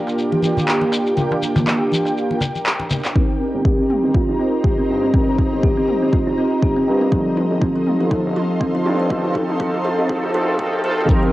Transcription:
Already playing: A#3 D4 F4 G4 A#4 G5
0.07 darbuka ka, shekere
0.19 shekere
0.32 muted conga, high conga
0.42 A#3 D4 F4 G4, high conga, shekere
0.57 muted conga, high conga, darbuka dum, shekere
0.68 clap, shekere
0.81 muted conga, darbuka tek
0.92 darbuka tek, shekere
1.07 shekere
1.17 A#3 D4 F4 G4, muted conga, low conga, shekere
1.31 darbuka ka, high conga
1.42 muted conga, shekere
1.56 darbuka tek, high conga, low conga, darbuka dum, shekere
1.67 clap, muted conga, darbuka ka, shekere
1.92 muted conga, high conga, shekere
2.05 darbuka ka, shekere
2.17 shekere
2.31 muted conga
2.41 darbuka tek, low conga, shekere
2.55 muted conga, shekere
2.66 clap, shekere
2.80 muted conga, high conga
2.90 low conga, shekere
3.04 clap, darbuka tek, shekere
3.16 C4 D#4 G4 A#4 C5 D#5 A#5, kick, mid tom
3.41 C4
3.54 G1
3.65 G4, kick, mid tom
3.79 C4
3.90 mid tom
4.04 G1 C4
4.15 F4, kick, mid tom
4.29 A#1 D#4
4.40 C4 D#4 G4 A#4
4.64 G4, kick, mid tom
4.78 C4
4.89 G2
5.03 C4
5.14 C4 D#4 G4 A#4, kick, mid tom
5.38 C4, kick
5.53 G1
5.63 G4, kick, mid tom
5.77 C4
5.88 mid tom
6.02 G1 C4
6.13 F4, kick, mid tom
6.27 A#1 D#4
6.38 C4 D#4 G4 A#4
6.63 G4, kick, mid tom
6.76 C4
6.87 G2
7.01 C4
7.12 F3 C4 D#4 F4 A4 F5 C6, kick, mid tom
7.37 F3, mid tom
7.51 G1
7.62 C4, kick, mid tom
7.76 F3
7.87 mid tom
8.01 G1 F3
8.11 F3 C4 D#4 F4 A4, kick, mid tom
8.25 G1
8.36 F3, mid tom
8.61 C4, kick, mid tom
8.75 F3
8.86 G2, mid tom
8.99 F3
9.10 F3 C4 D#4 F4 A4, kick, mid tom
9.24 mid tom
9.35 F3, kick, mid tom
9.49 G1, mid tom
9.60 F3 C4 D#4 F4 A4, kick, mid tom
9.74 mid tom
9.85 F3, mid tom
9.99 G1, mid tom
10.09 F3 C4 D#4 F4 A4, kick, mid tom
10.17 mid tom
10.24 G1, mid tom
10.29 mid tom
10.34 D2 F3 C4 D#4 F4 A4, mid tom
10.41 mid tom
10.48 mid tom
10.54 mid tom
10.59 F3 C4 D#4 F4 A4, kick, mid tom
10.66 mid tom
10.73 mid tom
10.79 mid tom
10.84 F3 C4 D#4 F4 A4, mid tom
10.91 mid tom
10.98 G1, mid tom
11.04 mid tom
11.09 C4 D#4 G4 A#4 D#5 G5 C6, kick, shekere
11.23 C4

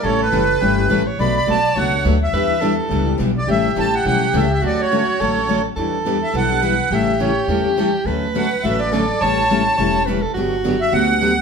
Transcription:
0.03 A1 C#3 E3 G3 A3 C#4 E4 G4 A4 C#5
0.21 B4
0.32 F#1 C#3 E3 G3 A3 C#4 E4 G4 A4
0.61 G1 C#3 E3 G3 A3 C#4 E4 G4 A4
0.78 A3 C#4 G4
0.90 A1 C#3 E3 G3 A3 C#4 E4 G4 A4 B4
1.06 C#5
1.19 B1 B2 F#3 A3 D4 F#4 B4 D5 B5
1.37 B5
1.47 B1 B2 F#3 A3 D4 F#4 B4 A5
1.75 C#2 B2 F#3 A3 D4 F#4 B4 C#5 F#5
1.92 A3 D4 F#4
2.05 D2 B2 F#3 A3 D4 F#4 B4
2.23 E5
2.33 E2 E3 G3 B3 D4 E4 G4 B4
2.61 E3 G3 B3 D4 E4 G4 A4 B4
2.89 C#2 E3 G3 B3 D4 E4 G4 B4
3.06 B3 D4 G4
3.18 B1 E3 G3 B3 D4 E4 G4 B4
3.38 D5
3.47 A1 C#3 E3 G3 A3 C#4 E4 G4 A4 E5
3.75 A1 C#3 E3 G3 A3 C#4 E4 G4 A4 A5
3.95 F#5
4.05 B1 C#3 E3 G3 A3 C#4 E4 G4 A4 F#5
4.22 A3 C#4 G4
4.33 C#2 C#3 E3 G3 A3 C#4 E4 G4 A4 E5
4.53 E5
4.62 D2 D3 F#3 A3 C#4 F#4 A4
4.66 D5
4.81 C#5
4.92 D3 F#3 A3 C#4 F#4 A4
5.20 A1 D3 F#3 A3 C#4 F#4 A4
5.36 A3 C#4 F#4
5.49 D3 F#3 A3 C#4 F#4 A4
5.76 E2 E3 G3 B3 D4 E4 G4 A4 B4
6.05 E3 G3 B3 D4 E4 G4 B4
6.23 E5
6.33 B1 E3 G3 B3 D4 E4 G4 B4 F#5
6.50 B3 D4 G4
6.61 E3 G3 B3 D4 E4 G4 B4
6.91 A1 C#3 E3 G3 A3 C#4 E4 G4 A4 E5
7.20 C#3 E3 G3 A3 C#4 E4 G4 A4 C#5
7.48 E2 C#3 E3 G3 A3 C#4 E4 G4 A4
7.65 A3 C#4 G4
7.77 C#3 E3 G3 A3 C#4 E4 G4 A4
8.05 D2 D3 F#3 A3 C#4 F#4 A4 B4
8.35 D3 F#3 A3 C#4 F#4 A4 F#5
8.63 A1 D3 F#3 A3 C#4 F#4 A4 E5
8.79 C#4 D5
8.84 A3
8.92 D3 F#3 A3 C#4 F#4 A4
9.20 A1 C#3 E3 G3 A3 C#4 E4 G4 A4 C#5 A5
9.50 C#3 E3 G3 A3 C#4 E4 G4 A4
9.77 E1 C#3 E3 G3 A3 C#4 E4 G4 A4 C#5
9.96 A3 C#4 G4
10.06 C#3 E3 G3 A3 C#4 E4 G4 A4 B4
10.22 A4
10.34 G1 D3 F#3 B3 D4 F#4 G4
10.65 D3 F#3 B3 D4 G4
10.81 E5
10.93 D2 D3 F#3 B3 D4 G4 F#5
11.09 B3 D4 G4
11.22 D3 F#3 B3 D4 G4

